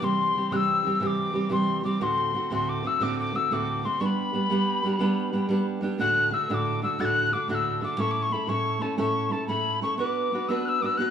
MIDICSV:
0, 0, Header, 1, 3, 480
1, 0, Start_track
1, 0, Key_signature, 1, "major"
1, 0, Tempo, 332594
1, 30, Time_signature, 12, 3, 24, 8
1, 8649, Key_signature, 2, "major"
1, 16025, End_track
2, 0, Start_track
2, 0, Title_t, "Tin whistle"
2, 0, Program_c, 0, 75
2, 57, Note_on_c, 0, 84, 103
2, 758, Note_on_c, 0, 90, 100
2, 779, Note_off_c, 0, 84, 0
2, 811, Note_on_c, 0, 88, 109
2, 826, Note_off_c, 0, 90, 0
2, 1363, Note_off_c, 0, 88, 0
2, 1363, Note_on_c, 0, 88, 81
2, 1491, Note_off_c, 0, 88, 0
2, 1491, Note_on_c, 0, 88, 100
2, 1539, Note_on_c, 0, 86, 109
2, 1554, Note_off_c, 0, 88, 0
2, 2188, Note_off_c, 0, 86, 0
2, 2197, Note_on_c, 0, 84, 101
2, 2634, Note_off_c, 0, 84, 0
2, 2665, Note_on_c, 0, 86, 92
2, 2926, Note_on_c, 0, 84, 105
2, 2948, Note_off_c, 0, 86, 0
2, 3630, Note_off_c, 0, 84, 0
2, 3666, Note_on_c, 0, 84, 92
2, 3883, Note_on_c, 0, 86, 98
2, 3905, Note_off_c, 0, 84, 0
2, 4142, Note_on_c, 0, 88, 90
2, 4163, Note_off_c, 0, 86, 0
2, 4371, Note_on_c, 0, 86, 97
2, 4392, Note_off_c, 0, 88, 0
2, 4591, Note_off_c, 0, 86, 0
2, 4612, Note_on_c, 0, 86, 99
2, 4846, Note_on_c, 0, 88, 96
2, 4868, Note_off_c, 0, 86, 0
2, 5097, Note_on_c, 0, 86, 99
2, 5118, Note_off_c, 0, 88, 0
2, 5560, Note_on_c, 0, 84, 90
2, 5582, Note_off_c, 0, 86, 0
2, 5779, Note_on_c, 0, 85, 89
2, 5801, Note_off_c, 0, 84, 0
2, 5851, Note_on_c, 0, 83, 97
2, 5866, Note_off_c, 0, 85, 0
2, 8173, Note_off_c, 0, 83, 0
2, 8665, Note_on_c, 0, 90, 122
2, 9144, Note_on_c, 0, 88, 116
2, 9165, Note_off_c, 0, 90, 0
2, 9394, Note_off_c, 0, 88, 0
2, 9394, Note_on_c, 0, 88, 99
2, 9441, Note_on_c, 0, 86, 107
2, 9456, Note_off_c, 0, 88, 0
2, 9854, Note_off_c, 0, 86, 0
2, 9862, Note_on_c, 0, 88, 102
2, 10107, Note_on_c, 0, 93, 109
2, 10129, Note_off_c, 0, 88, 0
2, 10173, Note_on_c, 0, 90, 119
2, 10187, Note_off_c, 0, 93, 0
2, 10579, Note_on_c, 0, 86, 103
2, 10600, Note_off_c, 0, 90, 0
2, 10815, Note_off_c, 0, 86, 0
2, 10834, Note_on_c, 0, 90, 103
2, 10892, Note_on_c, 0, 88, 112
2, 10907, Note_off_c, 0, 90, 0
2, 11271, Note_off_c, 0, 88, 0
2, 11313, Note_on_c, 0, 86, 97
2, 11548, Note_on_c, 0, 85, 106
2, 11570, Note_off_c, 0, 86, 0
2, 11704, Note_on_c, 0, 86, 108
2, 11726, Note_off_c, 0, 85, 0
2, 11867, Note_on_c, 0, 85, 117
2, 11889, Note_off_c, 0, 86, 0
2, 12012, Note_on_c, 0, 83, 101
2, 12034, Note_off_c, 0, 85, 0
2, 12250, Note_on_c, 0, 85, 109
2, 12272, Note_off_c, 0, 83, 0
2, 12726, Note_on_c, 0, 81, 88
2, 12748, Note_off_c, 0, 85, 0
2, 12968, Note_off_c, 0, 81, 0
2, 12976, Note_on_c, 0, 85, 106
2, 13448, Note_on_c, 0, 81, 93
2, 13470, Note_off_c, 0, 85, 0
2, 13672, Note_off_c, 0, 81, 0
2, 13681, Note_on_c, 0, 83, 114
2, 14138, Note_off_c, 0, 83, 0
2, 14185, Note_on_c, 0, 85, 97
2, 14390, Note_off_c, 0, 85, 0
2, 14399, Note_on_c, 0, 86, 104
2, 15131, Note_on_c, 0, 88, 110
2, 15152, Note_off_c, 0, 86, 0
2, 15374, Note_on_c, 0, 90, 101
2, 15388, Note_off_c, 0, 88, 0
2, 15422, Note_on_c, 0, 88, 110
2, 15436, Note_off_c, 0, 90, 0
2, 15617, Note_on_c, 0, 86, 101
2, 15632, Note_off_c, 0, 88, 0
2, 15665, Note_on_c, 0, 88, 110
2, 15679, Note_off_c, 0, 86, 0
2, 15839, Note_on_c, 0, 90, 111
2, 15860, Note_off_c, 0, 88, 0
2, 16025, Note_off_c, 0, 90, 0
2, 16025, End_track
3, 0, Start_track
3, 0, Title_t, "Steel-string acoustic guitar"
3, 0, Program_c, 1, 25
3, 25, Note_on_c, 1, 48, 85
3, 30, Note_on_c, 1, 52, 83
3, 38, Note_on_c, 1, 55, 85
3, 48, Note_on_c, 1, 60, 76
3, 54, Note_on_c, 1, 67, 89
3, 475, Note_off_c, 1, 52, 0
3, 492, Note_on_c, 1, 52, 60
3, 494, Note_off_c, 1, 55, 0
3, 505, Note_off_c, 1, 48, 0
3, 511, Note_on_c, 1, 55, 65
3, 517, Note_off_c, 1, 60, 0
3, 520, Note_off_c, 1, 67, 0
3, 523, Note_on_c, 1, 60, 61
3, 544, Note_on_c, 1, 67, 77
3, 733, Note_off_c, 1, 52, 0
3, 734, Note_off_c, 1, 55, 0
3, 734, Note_on_c, 1, 48, 80
3, 743, Note_off_c, 1, 60, 0
3, 749, Note_off_c, 1, 67, 0
3, 751, Note_on_c, 1, 52, 91
3, 751, Note_on_c, 1, 55, 86
3, 761, Note_on_c, 1, 60, 92
3, 766, Note_on_c, 1, 67, 87
3, 1201, Note_off_c, 1, 52, 0
3, 1218, Note_off_c, 1, 48, 0
3, 1218, Note_on_c, 1, 52, 74
3, 1222, Note_off_c, 1, 55, 0
3, 1234, Note_off_c, 1, 67, 0
3, 1239, Note_on_c, 1, 55, 69
3, 1242, Note_off_c, 1, 60, 0
3, 1248, Note_on_c, 1, 60, 67
3, 1264, Note_on_c, 1, 67, 80
3, 1437, Note_off_c, 1, 52, 0
3, 1442, Note_off_c, 1, 55, 0
3, 1443, Note_on_c, 1, 48, 76
3, 1455, Note_off_c, 1, 60, 0
3, 1455, Note_on_c, 1, 52, 89
3, 1459, Note_on_c, 1, 55, 88
3, 1465, Note_off_c, 1, 67, 0
3, 1472, Note_on_c, 1, 60, 83
3, 1482, Note_on_c, 1, 67, 96
3, 1894, Note_off_c, 1, 52, 0
3, 1912, Note_off_c, 1, 55, 0
3, 1912, Note_on_c, 1, 52, 62
3, 1930, Note_on_c, 1, 55, 65
3, 1931, Note_off_c, 1, 48, 0
3, 1939, Note_off_c, 1, 67, 0
3, 1942, Note_off_c, 1, 60, 0
3, 1948, Note_on_c, 1, 60, 71
3, 1956, Note_on_c, 1, 67, 80
3, 2146, Note_off_c, 1, 52, 0
3, 2154, Note_on_c, 1, 48, 83
3, 2159, Note_off_c, 1, 60, 0
3, 2160, Note_off_c, 1, 55, 0
3, 2163, Note_on_c, 1, 52, 87
3, 2174, Note_off_c, 1, 67, 0
3, 2176, Note_on_c, 1, 60, 86
3, 2177, Note_on_c, 1, 55, 83
3, 2192, Note_on_c, 1, 67, 92
3, 2627, Note_off_c, 1, 52, 0
3, 2635, Note_off_c, 1, 55, 0
3, 2644, Note_on_c, 1, 52, 69
3, 2646, Note_off_c, 1, 48, 0
3, 2653, Note_on_c, 1, 55, 70
3, 2664, Note_off_c, 1, 60, 0
3, 2664, Note_off_c, 1, 67, 0
3, 2670, Note_on_c, 1, 60, 65
3, 2687, Note_on_c, 1, 67, 78
3, 2881, Note_on_c, 1, 38, 81
3, 2889, Note_off_c, 1, 60, 0
3, 2890, Note_on_c, 1, 45, 76
3, 2891, Note_off_c, 1, 52, 0
3, 2895, Note_off_c, 1, 55, 0
3, 2897, Note_on_c, 1, 50, 90
3, 2905, Note_on_c, 1, 57, 92
3, 2906, Note_off_c, 1, 67, 0
3, 2906, Note_on_c, 1, 60, 90
3, 2912, Note_on_c, 1, 66, 90
3, 3359, Note_off_c, 1, 50, 0
3, 3362, Note_off_c, 1, 60, 0
3, 3365, Note_on_c, 1, 50, 61
3, 3368, Note_off_c, 1, 38, 0
3, 3373, Note_off_c, 1, 45, 0
3, 3379, Note_on_c, 1, 60, 67
3, 3380, Note_off_c, 1, 57, 0
3, 3383, Note_off_c, 1, 66, 0
3, 3398, Note_on_c, 1, 57, 74
3, 3409, Note_on_c, 1, 66, 68
3, 3606, Note_on_c, 1, 38, 87
3, 3607, Note_off_c, 1, 50, 0
3, 3615, Note_on_c, 1, 45, 82
3, 3617, Note_off_c, 1, 60, 0
3, 3621, Note_off_c, 1, 57, 0
3, 3623, Note_off_c, 1, 66, 0
3, 3624, Note_on_c, 1, 50, 83
3, 3633, Note_on_c, 1, 60, 85
3, 3638, Note_on_c, 1, 57, 91
3, 3641, Note_on_c, 1, 66, 92
3, 4079, Note_off_c, 1, 50, 0
3, 4085, Note_on_c, 1, 50, 71
3, 4088, Note_off_c, 1, 60, 0
3, 4090, Note_off_c, 1, 38, 0
3, 4094, Note_off_c, 1, 45, 0
3, 4105, Note_off_c, 1, 57, 0
3, 4105, Note_on_c, 1, 60, 70
3, 4107, Note_off_c, 1, 66, 0
3, 4122, Note_on_c, 1, 57, 73
3, 4132, Note_on_c, 1, 66, 75
3, 4319, Note_off_c, 1, 50, 0
3, 4331, Note_on_c, 1, 38, 78
3, 4333, Note_off_c, 1, 57, 0
3, 4333, Note_off_c, 1, 60, 0
3, 4333, Note_on_c, 1, 45, 82
3, 4336, Note_on_c, 1, 50, 84
3, 4337, Note_off_c, 1, 66, 0
3, 4350, Note_on_c, 1, 60, 92
3, 4351, Note_on_c, 1, 57, 94
3, 4354, Note_on_c, 1, 66, 83
3, 4797, Note_off_c, 1, 50, 0
3, 4802, Note_on_c, 1, 50, 65
3, 4811, Note_off_c, 1, 38, 0
3, 4811, Note_off_c, 1, 60, 0
3, 4812, Note_off_c, 1, 45, 0
3, 4817, Note_off_c, 1, 57, 0
3, 4823, Note_off_c, 1, 66, 0
3, 4829, Note_on_c, 1, 60, 67
3, 4834, Note_on_c, 1, 57, 70
3, 4849, Note_on_c, 1, 66, 65
3, 5047, Note_off_c, 1, 50, 0
3, 5060, Note_off_c, 1, 60, 0
3, 5062, Note_on_c, 1, 38, 70
3, 5063, Note_off_c, 1, 57, 0
3, 5063, Note_on_c, 1, 45, 81
3, 5070, Note_off_c, 1, 66, 0
3, 5070, Note_on_c, 1, 50, 85
3, 5080, Note_on_c, 1, 60, 85
3, 5081, Note_on_c, 1, 57, 87
3, 5085, Note_on_c, 1, 66, 91
3, 5531, Note_off_c, 1, 50, 0
3, 5532, Note_off_c, 1, 60, 0
3, 5536, Note_off_c, 1, 38, 0
3, 5537, Note_off_c, 1, 45, 0
3, 5537, Note_on_c, 1, 50, 57
3, 5546, Note_off_c, 1, 57, 0
3, 5548, Note_off_c, 1, 66, 0
3, 5549, Note_on_c, 1, 60, 71
3, 5571, Note_on_c, 1, 57, 71
3, 5578, Note_on_c, 1, 66, 75
3, 5763, Note_off_c, 1, 50, 0
3, 5769, Note_on_c, 1, 55, 82
3, 5778, Note_off_c, 1, 60, 0
3, 5780, Note_off_c, 1, 57, 0
3, 5783, Note_on_c, 1, 59, 79
3, 5786, Note_on_c, 1, 62, 91
3, 5794, Note_off_c, 1, 66, 0
3, 5804, Note_on_c, 1, 67, 78
3, 6236, Note_off_c, 1, 55, 0
3, 6249, Note_off_c, 1, 59, 0
3, 6253, Note_on_c, 1, 55, 59
3, 6267, Note_off_c, 1, 67, 0
3, 6267, Note_on_c, 1, 59, 66
3, 6275, Note_off_c, 1, 62, 0
3, 6281, Note_on_c, 1, 62, 64
3, 6294, Note_on_c, 1, 67, 67
3, 6477, Note_off_c, 1, 55, 0
3, 6492, Note_off_c, 1, 59, 0
3, 6495, Note_on_c, 1, 55, 92
3, 6505, Note_off_c, 1, 62, 0
3, 6510, Note_on_c, 1, 59, 89
3, 6511, Note_off_c, 1, 67, 0
3, 6526, Note_on_c, 1, 62, 96
3, 6527, Note_on_c, 1, 67, 96
3, 6959, Note_off_c, 1, 55, 0
3, 6974, Note_off_c, 1, 59, 0
3, 6977, Note_on_c, 1, 55, 76
3, 6988, Note_off_c, 1, 67, 0
3, 6991, Note_on_c, 1, 59, 79
3, 7003, Note_off_c, 1, 62, 0
3, 7008, Note_on_c, 1, 62, 81
3, 7023, Note_on_c, 1, 67, 84
3, 7183, Note_off_c, 1, 55, 0
3, 7201, Note_on_c, 1, 55, 90
3, 7204, Note_off_c, 1, 59, 0
3, 7206, Note_off_c, 1, 62, 0
3, 7221, Note_on_c, 1, 59, 99
3, 7223, Note_off_c, 1, 67, 0
3, 7224, Note_on_c, 1, 62, 101
3, 7240, Note_on_c, 1, 67, 93
3, 7670, Note_off_c, 1, 55, 0
3, 7681, Note_off_c, 1, 59, 0
3, 7687, Note_on_c, 1, 55, 67
3, 7698, Note_on_c, 1, 59, 67
3, 7704, Note_off_c, 1, 67, 0
3, 7707, Note_off_c, 1, 62, 0
3, 7713, Note_on_c, 1, 62, 76
3, 7727, Note_on_c, 1, 67, 71
3, 7900, Note_off_c, 1, 55, 0
3, 7915, Note_off_c, 1, 59, 0
3, 7917, Note_on_c, 1, 55, 91
3, 7926, Note_off_c, 1, 62, 0
3, 7932, Note_on_c, 1, 59, 78
3, 7937, Note_off_c, 1, 67, 0
3, 7944, Note_on_c, 1, 62, 90
3, 7955, Note_on_c, 1, 67, 85
3, 8363, Note_off_c, 1, 55, 0
3, 8380, Note_off_c, 1, 59, 0
3, 8381, Note_on_c, 1, 55, 78
3, 8398, Note_on_c, 1, 59, 66
3, 8408, Note_off_c, 1, 62, 0
3, 8413, Note_off_c, 1, 67, 0
3, 8413, Note_on_c, 1, 62, 80
3, 8430, Note_on_c, 1, 67, 75
3, 8633, Note_on_c, 1, 38, 86
3, 8635, Note_off_c, 1, 55, 0
3, 8636, Note_off_c, 1, 62, 0
3, 8640, Note_on_c, 1, 45, 81
3, 8643, Note_off_c, 1, 59, 0
3, 8648, Note_on_c, 1, 50, 85
3, 8654, Note_on_c, 1, 62, 86
3, 8660, Note_off_c, 1, 67, 0
3, 8665, Note_on_c, 1, 57, 93
3, 8669, Note_on_c, 1, 66, 95
3, 9088, Note_off_c, 1, 50, 0
3, 9104, Note_off_c, 1, 62, 0
3, 9105, Note_on_c, 1, 50, 61
3, 9121, Note_off_c, 1, 38, 0
3, 9122, Note_on_c, 1, 62, 56
3, 9125, Note_off_c, 1, 45, 0
3, 9127, Note_off_c, 1, 66, 0
3, 9134, Note_off_c, 1, 57, 0
3, 9140, Note_on_c, 1, 57, 62
3, 9145, Note_on_c, 1, 66, 69
3, 9357, Note_off_c, 1, 50, 0
3, 9359, Note_on_c, 1, 38, 77
3, 9366, Note_off_c, 1, 62, 0
3, 9371, Note_on_c, 1, 45, 84
3, 9375, Note_off_c, 1, 57, 0
3, 9377, Note_off_c, 1, 66, 0
3, 9378, Note_on_c, 1, 50, 76
3, 9384, Note_on_c, 1, 62, 88
3, 9390, Note_on_c, 1, 57, 80
3, 9396, Note_on_c, 1, 66, 90
3, 9823, Note_off_c, 1, 50, 0
3, 9840, Note_on_c, 1, 50, 70
3, 9842, Note_off_c, 1, 62, 0
3, 9845, Note_off_c, 1, 38, 0
3, 9851, Note_off_c, 1, 45, 0
3, 9859, Note_on_c, 1, 62, 70
3, 9863, Note_off_c, 1, 66, 0
3, 9867, Note_off_c, 1, 57, 0
3, 9873, Note_on_c, 1, 57, 66
3, 9881, Note_on_c, 1, 66, 73
3, 10077, Note_off_c, 1, 50, 0
3, 10080, Note_on_c, 1, 38, 84
3, 10085, Note_on_c, 1, 45, 84
3, 10087, Note_off_c, 1, 62, 0
3, 10090, Note_off_c, 1, 57, 0
3, 10091, Note_off_c, 1, 66, 0
3, 10094, Note_on_c, 1, 50, 91
3, 10104, Note_on_c, 1, 62, 87
3, 10108, Note_on_c, 1, 57, 91
3, 10108, Note_on_c, 1, 66, 95
3, 10542, Note_off_c, 1, 50, 0
3, 10558, Note_off_c, 1, 62, 0
3, 10559, Note_on_c, 1, 50, 60
3, 10566, Note_off_c, 1, 38, 0
3, 10569, Note_off_c, 1, 45, 0
3, 10575, Note_on_c, 1, 62, 70
3, 10580, Note_off_c, 1, 66, 0
3, 10586, Note_off_c, 1, 57, 0
3, 10592, Note_on_c, 1, 57, 68
3, 10609, Note_on_c, 1, 66, 73
3, 10792, Note_on_c, 1, 38, 77
3, 10794, Note_off_c, 1, 50, 0
3, 10798, Note_on_c, 1, 45, 82
3, 10799, Note_off_c, 1, 62, 0
3, 10806, Note_off_c, 1, 57, 0
3, 10809, Note_off_c, 1, 66, 0
3, 10811, Note_on_c, 1, 50, 83
3, 10817, Note_on_c, 1, 62, 82
3, 10823, Note_on_c, 1, 57, 89
3, 10827, Note_on_c, 1, 66, 88
3, 11254, Note_off_c, 1, 50, 0
3, 11270, Note_off_c, 1, 62, 0
3, 11271, Note_on_c, 1, 50, 68
3, 11283, Note_off_c, 1, 38, 0
3, 11286, Note_off_c, 1, 45, 0
3, 11287, Note_on_c, 1, 62, 65
3, 11297, Note_off_c, 1, 57, 0
3, 11300, Note_off_c, 1, 66, 0
3, 11303, Note_on_c, 1, 57, 67
3, 11320, Note_on_c, 1, 66, 69
3, 11503, Note_off_c, 1, 57, 0
3, 11507, Note_on_c, 1, 45, 80
3, 11514, Note_off_c, 1, 50, 0
3, 11520, Note_off_c, 1, 62, 0
3, 11520, Note_on_c, 1, 57, 84
3, 11526, Note_on_c, 1, 61, 89
3, 11532, Note_on_c, 1, 64, 81
3, 11537, Note_off_c, 1, 66, 0
3, 11543, Note_on_c, 1, 69, 87
3, 11977, Note_off_c, 1, 57, 0
3, 11995, Note_on_c, 1, 57, 60
3, 12001, Note_off_c, 1, 45, 0
3, 12004, Note_off_c, 1, 61, 0
3, 12014, Note_off_c, 1, 64, 0
3, 12019, Note_off_c, 1, 69, 0
3, 12022, Note_on_c, 1, 61, 66
3, 12033, Note_on_c, 1, 64, 71
3, 12039, Note_on_c, 1, 69, 68
3, 12228, Note_off_c, 1, 57, 0
3, 12228, Note_on_c, 1, 45, 80
3, 12234, Note_off_c, 1, 61, 0
3, 12234, Note_off_c, 1, 64, 0
3, 12245, Note_on_c, 1, 57, 79
3, 12250, Note_off_c, 1, 69, 0
3, 12252, Note_on_c, 1, 61, 87
3, 12252, Note_on_c, 1, 64, 77
3, 12267, Note_on_c, 1, 69, 93
3, 12690, Note_off_c, 1, 57, 0
3, 12708, Note_on_c, 1, 57, 63
3, 12710, Note_off_c, 1, 61, 0
3, 12723, Note_off_c, 1, 45, 0
3, 12725, Note_off_c, 1, 64, 0
3, 12727, Note_on_c, 1, 61, 74
3, 12737, Note_off_c, 1, 69, 0
3, 12742, Note_on_c, 1, 64, 71
3, 12754, Note_on_c, 1, 69, 77
3, 12938, Note_off_c, 1, 57, 0
3, 12946, Note_off_c, 1, 61, 0
3, 12955, Note_on_c, 1, 57, 86
3, 12956, Note_on_c, 1, 45, 84
3, 12957, Note_off_c, 1, 64, 0
3, 12963, Note_off_c, 1, 69, 0
3, 12963, Note_on_c, 1, 61, 91
3, 12975, Note_on_c, 1, 64, 98
3, 12981, Note_on_c, 1, 69, 99
3, 13410, Note_off_c, 1, 57, 0
3, 13427, Note_on_c, 1, 57, 70
3, 13433, Note_off_c, 1, 61, 0
3, 13446, Note_off_c, 1, 64, 0
3, 13448, Note_off_c, 1, 45, 0
3, 13450, Note_on_c, 1, 61, 65
3, 13461, Note_off_c, 1, 69, 0
3, 13464, Note_on_c, 1, 64, 69
3, 13478, Note_on_c, 1, 69, 70
3, 13675, Note_off_c, 1, 57, 0
3, 13680, Note_on_c, 1, 45, 78
3, 13684, Note_off_c, 1, 61, 0
3, 13693, Note_off_c, 1, 64, 0
3, 13693, Note_on_c, 1, 57, 80
3, 13701, Note_off_c, 1, 69, 0
3, 13702, Note_on_c, 1, 61, 88
3, 13710, Note_on_c, 1, 64, 77
3, 13718, Note_on_c, 1, 69, 85
3, 14143, Note_off_c, 1, 57, 0
3, 14156, Note_off_c, 1, 61, 0
3, 14160, Note_on_c, 1, 57, 65
3, 14166, Note_off_c, 1, 64, 0
3, 14172, Note_off_c, 1, 45, 0
3, 14174, Note_on_c, 1, 61, 73
3, 14183, Note_off_c, 1, 69, 0
3, 14183, Note_on_c, 1, 64, 76
3, 14200, Note_on_c, 1, 69, 71
3, 14394, Note_off_c, 1, 57, 0
3, 14400, Note_on_c, 1, 59, 81
3, 14411, Note_off_c, 1, 61, 0
3, 14417, Note_on_c, 1, 62, 90
3, 14419, Note_off_c, 1, 64, 0
3, 14425, Note_on_c, 1, 66, 81
3, 14429, Note_off_c, 1, 69, 0
3, 14435, Note_on_c, 1, 71, 93
3, 14878, Note_off_c, 1, 59, 0
3, 14895, Note_on_c, 1, 59, 63
3, 14902, Note_off_c, 1, 62, 0
3, 14906, Note_off_c, 1, 66, 0
3, 14911, Note_off_c, 1, 71, 0
3, 14919, Note_on_c, 1, 62, 63
3, 14933, Note_on_c, 1, 66, 69
3, 14942, Note_on_c, 1, 71, 82
3, 15118, Note_off_c, 1, 59, 0
3, 15135, Note_off_c, 1, 62, 0
3, 15135, Note_on_c, 1, 59, 86
3, 15141, Note_off_c, 1, 66, 0
3, 15152, Note_on_c, 1, 62, 85
3, 15154, Note_off_c, 1, 71, 0
3, 15159, Note_on_c, 1, 66, 86
3, 15171, Note_on_c, 1, 71, 101
3, 15601, Note_off_c, 1, 59, 0
3, 15617, Note_off_c, 1, 62, 0
3, 15618, Note_on_c, 1, 59, 62
3, 15631, Note_off_c, 1, 66, 0
3, 15634, Note_on_c, 1, 62, 66
3, 15641, Note_off_c, 1, 71, 0
3, 15648, Note_on_c, 1, 66, 78
3, 15662, Note_on_c, 1, 71, 78
3, 15837, Note_off_c, 1, 59, 0
3, 15855, Note_off_c, 1, 62, 0
3, 15855, Note_on_c, 1, 59, 77
3, 15861, Note_off_c, 1, 66, 0
3, 15872, Note_on_c, 1, 62, 74
3, 15874, Note_off_c, 1, 71, 0
3, 15879, Note_on_c, 1, 66, 96
3, 15891, Note_on_c, 1, 71, 97
3, 16025, Note_off_c, 1, 59, 0
3, 16025, Note_off_c, 1, 62, 0
3, 16025, Note_off_c, 1, 66, 0
3, 16025, Note_off_c, 1, 71, 0
3, 16025, End_track
0, 0, End_of_file